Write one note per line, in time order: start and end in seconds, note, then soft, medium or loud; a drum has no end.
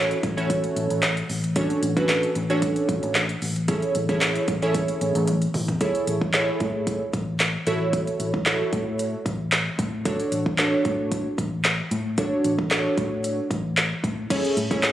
0.00 0.12 A1 medium
0.00 0.18 C#4 medium
0.00 0.18 E4 medium
0.00 0.18 F#4 medium
0.00 0.18 A4 medium
0.00 0.18 C#5 loud
0.11 closed hi-hat medium
0.23 0.65 A1 loud
0.23 kick loud
0.23 closed hi-hat medium
0.37 1.04 C#4 medium
0.37 1.04 E4 medium
0.37 1.04 F#4 medium
0.37 1.04 A4 medium
0.37 1.04 C#5 loud
0.37 closed hi-hat soft
0.50 kick medium
0.50 closed hi-hat loud
0.64 closed hi-hat medium
0.76 0.87 A1 loud
0.76 closed hi-hat medium
0.90 1.21 A1 loud
0.90 closed hi-hat medium
1.03 snare medium
1.03 clap loud
1.03 closed hi-hat loud
1.17 closed hi-hat medium
1.29 1.71 A1 medium
1.29 open hi-hat medium
1.44 closed hi-hat medium
1.56 1.81 C#4 medium
1.56 1.81 D4 medium
1.56 1.81 F#4 medium
1.56 1.82 A4 medium
1.56 1.82 C#5 medium
1.56 kick loud
1.56 closed hi-hat loud
1.70 closed hi-hat medium
1.83 2.24 A1 medium
1.83 closed hi-hat medium
1.97 2.30 C#4 medium
1.97 2.30 D4 medium
1.97 2.30 F#4 medium
1.97 2.30 A4 medium
1.97 2.30 B4 loud
1.97 kick loud
1.97 closed hi-hat medium
2.09 snare loud
2.09 clap loud
2.09 closed hi-hat medium
2.23 closed hi-hat medium
2.35 2.77 A1 loud
2.35 closed hi-hat medium
2.50 3.17 C#4 medium
2.50 3.17 D4 medium
2.50 3.17 F#4 medium
2.50 3.17 A4 medium
2.50 3.17 C#5 loud
2.50 closed hi-hat soft
2.62 kick medium
2.62 closed hi-hat loud
2.76 closed hi-hat medium
2.89 3.00 A1 loud
2.89 kick loud
2.89 closed hi-hat medium
3.03 3.34 A1 loud
3.03 closed hi-hat medium
3.15 snare medium
3.15 clap loud
3.15 closed hi-hat medium
3.29 closed hi-hat medium
3.42 3.84 A1 medium
3.42 open hi-hat medium
3.56 closed hi-hat medium
3.68 3.94 C#4 medium
3.68 3.94 E4 medium
3.68 3.94 G#4 medium
3.68 3.94 A4 medium
3.68 3.94 C#5 medium
3.68 kick loud
3.68 closed hi-hat loud
3.82 closed hi-hat medium
3.95 4.37 A1 medium
3.95 closed hi-hat medium
4.09 4.42 C#4 medium
4.09 4.42 E4 medium
4.09 4.42 G#4 medium
4.09 4.43 A4 medium
4.09 4.43 C#5 loud
4.09 kick medium
4.09 closed hi-hat medium
4.21 snare medium
4.21 clap loud
4.21 closed hi-hat medium
4.35 closed hi-hat medium
4.48 4.90 A1 loud
4.48 kick loud
4.48 closed hi-hat medium
4.62 5.29 C#4 medium
4.62 5.29 E4 medium
4.62 5.29 G#4 medium
4.62 5.29 A4 medium
4.62 5.29 C#5 loud
4.62 closed hi-hat soft
4.75 kick medium
4.75 closed hi-hat loud
4.88 closed hi-hat medium
5.01 5.12 A1 loud
5.01 closed hi-hat medium
5.15 5.46 A1 loud
5.15 closed hi-hat medium
5.28 closed hi-hat loud
5.28 high tom medium
5.42 closed hi-hat medium
5.54 5.75 A1 medium
5.54 mid tom loud
5.54 open hi-hat medium
5.68 closed hi-hat medium
5.68 floor tom loud
5.81 6.15 E4 medium
5.81 6.15 G#4 medium
5.81 6.15 A4 medium
5.81 6.15 C#5 medium
5.81 kick loud
5.81 closed hi-hat loud
5.95 closed hi-hat medium
6.07 6.49 A1 medium
6.07 closed hi-hat medium
6.21 kick medium
6.34 7.02 E4 medium
6.34 7.02 G#4 medium
6.34 7.02 A4 medium
6.34 7.02 C#5 loud
6.34 snare medium
6.34 clap loud
6.34 closed hi-hat medium
6.60 7.02 A2 loud
6.60 kick loud
6.60 closed hi-hat medium
6.87 kick medium
6.87 closed hi-hat medium
7.13 7.55 A1 medium
7.13 kick medium
7.13 closed hi-hat medium
7.40 snare medium
7.40 clap loud
7.40 closed hi-hat medium
7.67 8.08 A1 loud
7.67 8.31 E4 medium
7.67 8.31 F#4 medium
7.67 8.31 A4 medium
7.67 8.31 C#5 loud
7.67 closed hi-hat medium
7.93 kick loud
7.93 closed hi-hat loud
8.07 closed hi-hat medium
8.20 8.61 A1 medium
8.20 closed hi-hat medium
8.34 kick medium
8.46 9.15 E4 medium
8.46 9.15 F#4 medium
8.46 9.15 A4 medium
8.46 9.15 C#5 medium
8.46 snare medium
8.46 clap loud
8.46 closed hi-hat medium
8.73 9.14 A2 loud
8.73 kick loud
8.73 closed hi-hat medium
8.99 closed hi-hat loud
9.26 9.67 A1 medium
9.26 kick medium
9.26 closed hi-hat medium
9.52 snare medium
9.52 clap loud
9.52 closed hi-hat medium
9.79 10.20 A2 loud
9.79 kick medium
9.79 closed hi-hat medium
10.05 10.40 D4 medium
10.05 10.40 F#4 medium
10.05 10.40 A4 medium
10.05 10.40 C#5 medium
10.05 kick loud
10.05 closed hi-hat loud
10.20 closed hi-hat medium
10.32 10.74 A1 medium
10.32 closed hi-hat medium
10.46 kick medium
10.58 11.27 D4 medium
10.58 11.27 F#4 medium
10.58 11.27 A4 medium
10.58 11.27 C#5 medium
10.58 snare medium
10.58 clap loud
10.58 closed hi-hat medium
10.85 11.27 A2 loud
10.85 kick loud
10.85 closed hi-hat medium
11.12 kick medium
11.12 closed hi-hat loud
11.38 11.80 A1 medium
11.38 kick medium
11.38 closed hi-hat medium
11.65 snare medium
11.65 clap loud
11.65 closed hi-hat loud
11.91 12.33 A2 medium
11.91 closed hi-hat medium
12.18 12.52 D4 medium
12.18 12.52 F#4 medium
12.18 12.52 A4 medium
12.18 12.52 C#5 medium
12.18 kick loud
12.18 closed hi-hat loud
12.44 12.86 A1 medium
12.44 closed hi-hat medium
12.59 kick medium
12.71 13.39 D4 medium
12.71 13.39 F#4 medium
12.71 13.39 A4 medium
12.71 13.40 C#5 medium
12.71 snare medium
12.71 clap loud
12.71 closed hi-hat medium
12.98 13.39 A2 loud
12.98 kick medium
12.98 closed hi-hat medium
13.24 closed hi-hat loud
13.51 13.92 A1 medium
13.51 kick medium
13.51 closed hi-hat medium
13.77 snare medium
13.77 clap loud
13.77 closed hi-hat medium
14.04 14.25 A2 loud
14.04 kick medium
14.04 closed hi-hat medium
14.30 14.56 C#4 medium
14.30 14.56 E4 medium
14.30 14.56 G#4 medium
14.30 14.56 A4 medium
14.30 14.56 C#5 loud
14.30 kick loud
14.30 closed hi-hat loud
14.30 crash loud
14.45 closed hi-hat medium
14.57 14.92 A2 medium
14.57 closed hi-hat medium
14.71 14.92 C#4 medium
14.71 14.92 E4 medium
14.71 14.92 G#4 medium
14.71 14.92 A4 medium
14.71 14.92 C#5 loud
14.71 kick loud
14.71 closed hi-hat medium
14.83 snare loud
14.83 clap loud
14.83 closed hi-hat medium